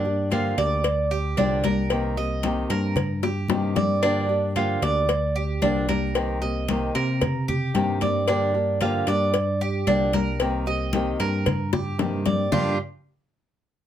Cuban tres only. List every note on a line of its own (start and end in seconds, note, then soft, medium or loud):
0.00 0.30 D4 medium
0.32 0.57 F4 medium
0.58 1.09 D5 medium
1.11 1.37 G4 medium
1.38 1.63 D4 medium
1.64 2.16 A#4 medium
2.17 2.69 D#5 medium
2.70 3.22 A#4 medium
3.23 3.75 G4 medium
3.76 4.02 D5 medium
4.03 4.54 D4 medium
4.56 4.82 F4 medium
4.83 5.34 D5 medium
5.36 5.61 G4 medium
5.62 5.88 D4 medium
5.89 6.40 A#4 medium
6.42 6.93 D#5 medium
6.95 7.47 A#4 medium
7.48 8.00 G4 medium
8.02 8.27 D5 medium
8.28 8.80 D4 medium
8.81 9.07 F4 medium
9.08 9.59 D5 medium
9.61 9.87 G4 medium
9.87 10.13 D4 medium
10.14 10.65 A#4 medium
10.67 11.18 D#5 medium
11.20 11.71 A#4 medium
11.73 12.24 G4 medium
12.26 12.52 D5 medium
12.52 12.77 G3 medium
12.52 12.77 D4 medium
12.52 12.77 F4 loud